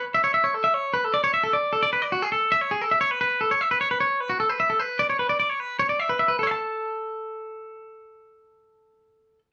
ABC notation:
X:1
M:4/4
L:1/16
Q:1/4=150
K:A
V:1 name="Clean electric guitar"
z e c e c A e c2 B A d c e A d- | d A d B d F G A2 e c G A e c B | B2 A c e B c B c2 B F A B e A | B2 d c B d d c B2 c d e B e B |
[Acea]16- | [Acea]16 |]